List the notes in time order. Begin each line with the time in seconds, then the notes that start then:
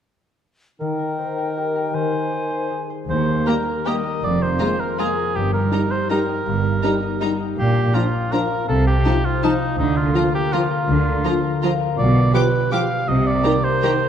0.80 D#3 D#4 A#4 G5
0.99 A#4
1.18 C5
1.38 A#4
1.57 G4
1.76 A#4
1.93 D#3 C5 G#5
2.11 C5
2.31 D5
2.50 C5
2.70 G#4
2.90 C5
3.09 D#2 D#3 C5
3.27 A#3
3.46 G3 A#3 G4 A#4 A#5
3.66 A#4
3.85 G3 A#3 G4 D#5 G5 A#5
4.05 A#4
4.23 F1 F2 D5
4.41 A#3 C5
4.59 G#3 A#3 F4 G#4 A#5
4.79 A#4
4.99 G#3 A#3 F4 G#4 G#5 A#5
5.18 A#4
5.35 G1 G2 G4
5.53 D#4 A#4
5.72 G3 D#4 G4 A#5
5.91 C5 D#5
6.10 G3 D#4 A#4 G5 A#5
6.29 D#5
6.46 G1 G2
6.64 D#4
6.83 G3 D#4 G4 A#5
7.03 D#5
7.21 G3 D#4 G5 A#5
7.40 D#5
7.58 A#1 A#2 G4
7.76 D4
7.94 F3 D4 F4 A#5
8.14 D5
8.32 F3 D4 A#4 F5 A#5
8.51 D5
8.69 C2 C3 A4
8.87 C4 G4
9.04 F3 D#4 F4 A5
9.25 F4 C5
9.43 F3 D#4 F5 A5
9.62 C5
9.79 D2 D3 D#4
9.97 A#3 F4
10.14 F3 F4 A#5
10.34 G4 A#4
10.52 F3 F4 F5 A#5
10.71 A#4
10.88 D2 D3
11.06 A#3
11.25 F3 F4 A#5
11.44 A#4
11.63 F3 F4 F5 A#5
11.81 A#4
11.98 B1 B2 D5
12.15 D4
12.34 F3 G4 B4 D6
12.53 D5
12.72 F3 G4 F5 G5 D6
12.90 D5
13.08 C2 C3 D#5
13.26 A#3 D5
13.43 D#3 G4 A#4 A#5
13.64 A#4 C5
13.83 D#3 G4 A#4 G5 A#5
14.01 A#4